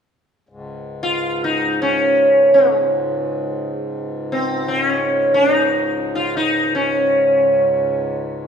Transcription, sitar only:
0, 0, Header, 1, 2, 480
1, 0, Start_track
1, 0, Tempo, 500000
1, 8131, End_track
2, 0, Start_track
2, 0, Title_t, "Sitar"
2, 0, Program_c, 0, 104
2, 987, Note_on_c, 0, 65, 79
2, 1379, Note_off_c, 0, 65, 0
2, 1383, Note_on_c, 0, 63, 72
2, 1740, Note_off_c, 0, 63, 0
2, 1744, Note_on_c, 0, 61, 68
2, 2387, Note_off_c, 0, 61, 0
2, 2440, Note_on_c, 0, 56, 60
2, 3554, Note_off_c, 0, 56, 0
2, 4148, Note_on_c, 0, 60, 61
2, 4494, Note_off_c, 0, 60, 0
2, 4494, Note_on_c, 0, 60, 68
2, 4638, Note_off_c, 0, 60, 0
2, 4638, Note_on_c, 0, 61, 68
2, 5125, Note_off_c, 0, 61, 0
2, 5129, Note_on_c, 0, 62, 72
2, 5321, Note_off_c, 0, 62, 0
2, 5321, Note_on_c, 0, 63, 72
2, 5904, Note_off_c, 0, 63, 0
2, 5907, Note_on_c, 0, 65, 78
2, 6087, Note_off_c, 0, 65, 0
2, 6111, Note_on_c, 0, 63, 69
2, 6474, Note_off_c, 0, 63, 0
2, 6478, Note_on_c, 0, 61, 61
2, 8131, Note_off_c, 0, 61, 0
2, 8131, End_track
0, 0, End_of_file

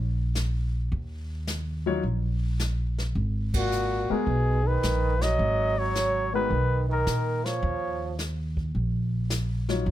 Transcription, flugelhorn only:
0, 0, Header, 1, 2, 480
1, 0, Start_track
1, 0, Key_signature, -6, "minor"
1, 0, Tempo, 559180
1, 786, Time_signature, 4, 2, 24, 8
1, 8507, End_track
2, 0, Start_track
2, 0, Title_t, "Flugelhorn"
2, 0, Program_c, 0, 56
2, 3060, Note_on_c, 0, 66, 79
2, 3534, Note_on_c, 0, 68, 90
2, 3547, Note_off_c, 0, 66, 0
2, 4013, Note_on_c, 0, 71, 83
2, 4026, Note_off_c, 0, 68, 0
2, 4485, Note_on_c, 0, 75, 97
2, 4498, Note_off_c, 0, 71, 0
2, 4967, Note_on_c, 0, 73, 91
2, 4980, Note_off_c, 0, 75, 0
2, 5444, Note_off_c, 0, 73, 0
2, 5455, Note_on_c, 0, 71, 89
2, 5895, Note_off_c, 0, 71, 0
2, 5936, Note_on_c, 0, 70, 82
2, 6404, Note_on_c, 0, 73, 81
2, 6417, Note_off_c, 0, 70, 0
2, 7031, Note_off_c, 0, 73, 0
2, 8507, End_track
0, 0, End_of_file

